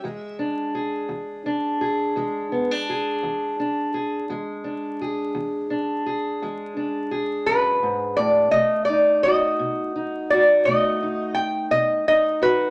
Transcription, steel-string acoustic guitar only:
\new Staff \with { instrumentName = "Steel-string acoustic guitar" } { \time 12/8 \key e \mixolydian \tempo 4. = 57 << { gis8 d'8 gis'4 d'8 gis'8 gis8 b16 d'16 gis'4 d'8 gis'8 | gis8 d'8 gis'4 d'8 gis'8 gis8 d'8 gis'2 | a8 dis'8 fis'4 dis'8 fis'8 a8 dis'4. dis'8 fis'8 | } \\ { e,4 r8 e,4 r8 e,4 r8 e,4 r8 | e,4 r8 e,4 r8 e,4 r8 fis,8 gis,8 a,8 | b,4 r8 b,4 r8 b,4 r8 b,4 r8 | } >> }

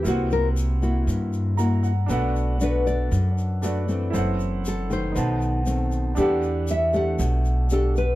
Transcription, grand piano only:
\new Staff \with { instrumentName = "Grand piano" } { \time 4/4 \key e \minor \tempo 4 = 118 << { r2. bes''8 fis''8 | r1 | r1 | r1 | } \\ { <e' bes' c'' fis''>1 | <d' a' b' fis''>2. <d' a' b' d''>4 | <e' a' c'' fis''>2 <dis' b' c'' a''>2 | <d' g' a' fis''>1 | } >> }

